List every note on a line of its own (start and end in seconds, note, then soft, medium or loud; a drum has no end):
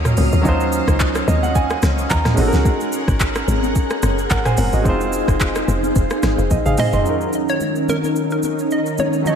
0.00 0.14 D#2 loud
0.00 0.39 F#3 medium
0.00 2.34 F#3 medium
0.00 0.40 C#4 medium
0.00 4.81 C#4 medium
0.00 0.41 D#4 medium
0.00 0.42 F4 medium
0.00 0.43 A#4 medium
0.00 2.34 D#5 medium
0.00 2.34 F5 medium
0.05 cross-stick medium
0.05 mid tom loud
0.05 shaker medium
0.17 0.31 C#2 loud
0.17 open hi-hat medium
0.17 high conga medium
0.17 low conga medium
0.17 shaker medium
0.32 0.43 D#2 loud
0.32 shaker medium
0.42 0.82 D#2 loud
0.42 2.32 F#3 medium
0.42 2.33 C#4 medium
0.42 2.34 D#4 medium
0.42 kick loud
0.42 low conga medium
0.42 shaker medium
0.47 2.35 F4 medium
0.47 2.36 C5 medium
0.60 shaker soft
0.72 shaker loud
0.88 1.22 C#2 loud
0.88 kick loud
0.88 cross-stick medium
0.88 shaker medium
1.00 kick loud
1.00 clap loud
1.00 shaker medium
1.15 cross-stick loud
1.15 shaker medium
1.28 1.75 D#2 loud
1.28 1.42 D#5 medium
1.28 high conga medium
1.28 low conga medium
1.28 shaker loud
1.43 1.54 F#5 medium
1.43 high conga medium
1.43 shaker medium
1.55 2.06 G#5 medium
1.55 kick loud
1.55 shaker medium
1.70 cross-stick loud
1.70 shaker soft
1.82 2.06 C#2 medium
1.82 cross-stick loud
1.82 snare medium
1.82 high conga medium
1.82 shaker medium
1.98 shaker medium
2.10 2.34 D#2 loud
2.10 2.61 A#5 medium
2.10 kick medium
2.10 clap medium
2.10 shaker medium
2.25 cross-stick medium
2.25 snare medium
2.25 mid tom loud
2.25 shaker medium
2.34 2.51 G#1 loud
2.34 4.52 G#3 medium
2.34 4.53 C#4 medium
2.34 4.54 D#4 medium
2.34 7.02 G#4 medium
2.34 4.83 A#4 medium
2.34 4.83 F#5 loud
2.34 open hi-hat medium
2.34 high conga medium
2.34 low conga medium
2.34 shaker medium
2.40 4.01 F#4 medium
2.40 2.47 A4 medium
2.48 4.05 A#4 medium
2.52 2.64 C#2 medium
2.52 snare medium
2.52 shaker medium
2.65 kick loud
2.65 low conga medium
2.65 shaker medium
2.81 shaker soft
2.92 shaker medium
3.08 3.42 G#1 loud
3.08 kick loud
3.08 cross-stick medium
3.08 shaker medium
3.20 kick loud
3.20 clap loud
3.20 shaker medium
3.35 cross-stick loud
3.35 shaker medium
3.48 3.84 G#1 loud
3.48 high conga medium
3.48 low conga medium
3.48 shaker medium
3.63 high conga medium
3.63 shaker medium
3.75 kick loud
3.75 shaker medium
3.90 cross-stick loud
3.90 shaker soft
4.02 4.27 F#1 loud
4.02 cross-stick loud
4.02 high conga medium
4.02 shaker medium
4.18 shaker medium
4.30 4.54 G#1 loud
4.30 4.45 A#4 medium
4.30 4.45 F#5 medium
4.30 kick medium
4.30 clap medium
4.30 shaker medium
4.45 4.58 C5 medium
4.45 4.57 G#5 medium
4.45 cross-stick medium
4.45 mid tom loud
4.45 shaker medium
4.57 4.71 F#1 loud
4.57 4.73 A#4 medium
4.57 4.72 F#5 medium
4.57 open hi-hat medium
4.57 high conga medium
4.57 low conga medium
4.57 shaker medium
4.73 4.84 G#1 medium
4.73 5.00 F#4 medium
4.73 4.99 D#5 medium
4.73 shaker medium
4.82 5.22 F1 loud
4.82 6.72 G#3 medium
4.82 6.73 C4 medium
4.82 7.03 D#4 medium
4.82 6.74 D#4 medium
4.82 7.03 C5 medium
4.82 7.03 F5 medium
4.82 kick loud
4.82 low conga medium
4.82 shaker medium
4.87 6.75 F4 medium
4.87 6.49 C5 medium
5.01 shaker soft
5.13 shaker loud
5.28 5.62 F1 medium
5.28 kick loud
5.28 cross-stick medium
5.28 shaker medium
5.40 kick loud
5.40 clap loud
5.40 shaker medium
5.55 cross-stick loud
5.55 shaker medium
5.68 5.92 F1 loud
5.68 high conga medium
5.68 low conga medium
5.68 shaker medium
5.83 high conga medium
5.83 shaker medium
5.96 6.09 F1 loud
5.96 kick loud
5.96 shaker medium
6.10 cross-stick loud
6.10 shaker soft
6.23 6.36 G#1 medium
6.23 cross-stick loud
6.23 snare medium
6.23 high conga medium
6.23 shaker medium
6.38 6.49 F1 medium
6.38 shaker medium
6.51 6.64 A#1 loud
6.51 6.65 D#5 medium
6.51 kick medium
6.51 high tom medium
6.51 shaker medium
6.66 6.76 G#1 medium
6.66 6.78 G#4 medium
6.66 6.77 F5 medium
6.66 mid tom medium
6.66 shaker medium
6.77 6.93 C5 medium
6.77 7.51 D#5 loud
6.77 6.92 G#5 medium
6.77 mid tom loud
6.77 open hi-hat medium
6.77 high conga medium
6.77 low conga medium
6.77 shaker medium
6.93 7.04 F1 loud
6.93 7.20 D#5 medium
6.93 7.19 C6 medium
6.93 floor tom loud
6.93 shaker medium
7.02 9.35 D#3 medium
7.02 9.20 F#3 medium
7.02 9.21 C#4 medium
7.02 9.35 C#4 medium
7.02 9.22 D#4 medium
7.02 9.35 D#4 medium
7.02 9.35 A#4 medium
7.02 low conga medium
7.02 shaker medium
7.07 9.23 F4 medium
7.07 9.24 A#4 medium
7.21 shaker soft
7.33 shaker medium
7.49 7.90 C#5 medium
7.49 shaker medium
7.60 low conga medium
7.60 shaker medium
7.75 shaker soft
7.88 8.31 A#4 loud
7.88 high conga medium
7.88 low conga medium
7.88 shaker medium
8.03 high conga medium
8.03 shaker medium
8.16 shaker medium
8.30 8.69 A#4 medium
8.30 shaker soft
8.43 high conga medium
8.43 shaker medium
8.59 shaker medium
8.71 8.97 D#5 loud
8.71 shaker medium
8.86 shaker soft
8.98 9.27 C#5 medium
8.98 high conga medium
8.98 low conga medium
8.98 shaker medium
9.13 shaker soft
9.22 9.35 F#3 medium
9.22 9.35 C#4 medium
9.22 9.35 D#4 medium
9.22 low conga medium
9.22 shaker medium
9.27 9.35 F3 medium
9.27 9.35 C#5 medium
9.27 9.35 D#5 loud